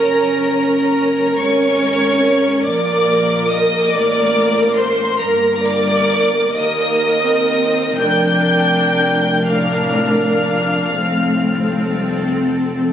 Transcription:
0.00 1.39 F#1 medium
0.00 1.39 F#2 medium
0.00 1.39 C#4 medium
0.00 1.35 A#4 loud
0.00 1.39 A#4 medium
0.00 1.34 A#5 loud
1.38 2.64 G#1 medium
1.38 2.64 G#2 medium
1.38 2.65 C#4 medium
1.38 2.65 A#4 medium
1.38 2.67 C#5 loud
1.38 2.64 C#6 loud
2.65 3.91 A#1 medium
2.65 3.91 A#2 medium
2.65 3.92 A#3 medium
2.65 3.92 A#4 medium
2.65 3.49 D5 loud
2.65 3.49 D6 loud
3.49 3.92 D#5 loud
3.49 3.93 D#6 loud
3.90 5.20 A1 medium
3.90 5.20 A2 medium
3.90 5.18 A#4 medium
3.90 4.77 D5 loud
3.90 4.75 D6 loud
3.95 5.18 A#3 medium
4.74 5.20 C5 loud
4.74 5.18 C6 loud
5.18 6.56 G1 medium
5.18 6.55 G2 medium
5.18 6.53 A#3 medium
5.18 5.64 A#4 medium
5.18 6.54 A#4 medium
5.18 5.63 A#5 loud
5.62 6.55 D5 loud
5.62 6.55 D6 loud
6.54 7.95 D#2 medium
6.54 7.24 A#3 medium
6.54 7.95 A#4 medium
6.54 7.98 D#5 loud
6.54 7.98 D#6 loud
7.26 7.98 C4 medium
7.97 10.90 F1 medium
7.97 9.35 F2 medium
7.97 9.45 D4 medium
7.97 9.45 A#4 medium
7.97 9.45 G5 loud
7.97 9.44 G6 loud
9.46 10.41 A2 loud
9.46 10.91 D4 medium
9.46 10.91 A#4 medium
9.46 12.43 F5 medium
9.46 12.43 F6 loud
10.44 10.94 A#2 medium
10.93 12.93 F1 medium
10.93 11.94 A2 medium
10.93 12.93 C4 medium
10.93 12.93 A4 medium
11.94 12.43 G2 medium
12.42 12.93 F2 medium

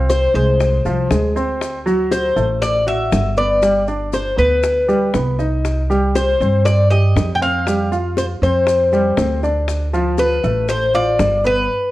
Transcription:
0.00 0.29 C2 medium
0.00 0.26 C4 medium
0.00 0.27 C5 medium
0.10 0.34 C5 medium
0.10 high bongo medium
0.10 maracas medium
0.34 0.82 C2 medium
0.34 0.76 G#3 medium
0.34 0.77 G#4 medium
0.34 1.32 C5 medium
0.34 maracas soft
0.60 high bongo medium
0.60 maracas medium
0.85 1.09 C2 medium
0.85 1.06 F3 medium
0.85 1.06 F4 medium
0.85 high bongo soft
0.85 maracas soft
1.10 2.30 D2 medium
1.10 1.31 G#3 medium
1.10 1.32 G#4 medium
1.10 high bongo medium
1.10 low bongo medium
1.10 maracas medium
1.36 1.77 C4 medium
1.36 1.77 C5 medium
1.36 high bongo soft
1.36 maracas soft
1.61 high bongo medium
1.61 maracas medium
1.86 2.27 F#3 medium
1.86 2.28 F#4 medium
1.86 maracas soft
2.12 2.61 C5 medium
2.12 high bongo medium
2.12 maracas medium
2.36 3.08 A1 medium
2.36 2.78 A3 medium
2.36 2.78 A4 medium
2.36 maracas soft
2.62 2.88 D5 medium
2.62 high bongo medium
2.62 maracas medium
2.87 3.28 F#4 medium
2.87 3.37 E5 loud
2.87 3.28 F#5 medium
2.87 maracas soft
3.12 4.32 G1 medium
3.12 high bongo medium
3.12 low bongo medium
3.12 maracas medium
3.37 3.58 B3 medium
3.37 3.58 B4 medium
3.37 4.09 D5 medium
3.37 maracas soft
3.62 3.83 G3 medium
3.62 3.83 G4 medium
3.62 high bongo medium
3.62 maracas medium
3.88 4.29 D4 medium
3.88 4.30 D5 medium
3.88 high bongo soft
3.88 maracas soft
4.13 4.40 C5 medium
4.13 high bongo medium
4.13 maracas medium
4.38 5.10 D2 medium
4.38 4.80 B3 medium
4.38 4.80 B4 medium
4.38 5.35 B4 medium
4.38 maracas soft
4.63 high bongo medium
4.63 maracas medium
4.88 5.09 G3 medium
4.88 5.09 G4 medium
4.88 high bongo soft
4.88 maracas soft
5.14 6.34 C2 medium
5.14 5.34 B3 medium
5.14 5.35 B4 medium
5.14 high bongo medium
5.14 low bongo medium
5.14 maracas medium
5.39 5.80 D#4 medium
5.39 5.80 D#5 medium
5.39 high bongo soft
5.39 maracas soft
5.65 high bongo medium
5.65 maracas medium
5.89 6.31 G3 medium
5.89 6.31 G4 medium
5.89 maracas soft
6.15 6.65 C5 medium
6.15 high bongo medium
6.15 maracas medium
6.40 7.12 G2 medium
6.40 6.82 C4 medium
6.40 6.82 C5 medium
6.40 maracas soft
6.65 6.90 D5 medium
6.65 high bongo medium
6.65 maracas medium
6.90 7.32 G4 medium
6.90 7.31 D#5 medium
6.90 7.33 G5 medium
6.90 maracas soft
7.15 8.35 F2 medium
7.15 high bongo medium
7.15 low bongo medium
7.15 maracas medium
7.35 7.42 G5 medium
7.41 7.62 C4 medium
7.41 7.62 C5 medium
7.41 8.13 F5 loud
7.41 maracas soft
7.67 7.88 G3 medium
7.67 7.88 G4 medium
7.67 high bongo medium
7.67 maracas medium
7.92 8.33 F4 medium
7.92 8.33 F5 medium
7.92 high bongo soft
7.92 maracas soft
8.17 8.24 C5 medium
8.17 high bongo medium
8.17 maracas medium
8.42 9.14 F2 medium
8.42 8.84 C4 medium
8.42 8.84 C5 medium
8.42 9.40 C5 medium
8.42 maracas soft
8.67 high bongo medium
8.67 maracas medium
8.92 9.13 G3 medium
8.92 9.14 G4 medium
8.92 high bongo soft
8.92 maracas soft
9.17 10.37 D2 medium
9.17 9.38 C4 medium
9.17 9.39 C5 medium
9.17 high bongo medium
9.17 low bongo medium
9.17 maracas medium
9.43 9.85 D4 medium
9.43 9.85 D5 medium
9.43 high bongo soft
9.43 maracas soft
9.68 high bongo medium
9.68 maracas medium
9.93 10.35 F3 medium
9.93 10.35 F4 medium
9.93 maracas soft
10.18 10.69 B4 medium
10.18 high bongo medium
10.18 maracas medium
10.44 11.16 A1 medium
10.44 10.85 A3 medium
10.44 10.85 A4 medium
10.44 maracas soft
10.69 10.93 C5 loud
10.69 high bongo medium
10.69 maracas medium
10.94 11.36 F4 medium
10.94 11.46 D5 loud
10.94 11.36 F5 medium
10.94 maracas soft
11.19 11.66 G1 medium
11.19 high bongo medium
11.19 low bongo medium
11.19 maracas medium
11.44 11.65 B3 medium
11.44 11.65 B4 medium
11.44 11.91 B4 medium
11.44 maracas soft

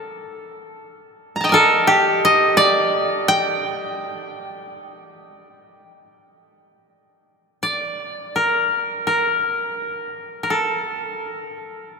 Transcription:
0.00 0.68 A4 medium
1.36 1.60 A#5 soft
1.41 2.24 D#5 soft
1.41 2.78 G5 soft
1.41 1.58 A5 soft
1.49 3.36 A#4 medium
1.49 2.31 D5 soft
1.54 3.44 A4 medium
1.87 3.91 G4 medium
2.25 2.63 D#5 medium
2.57 4.17 D5 loud
3.28 6.84 G5 loud
7.63 9.23 D5 medium
8.36 9.06 A#4 medium
9.07 10.43 A#4 medium
10.43 10.56 A#4 soft
10.50 12.00 A4 medium

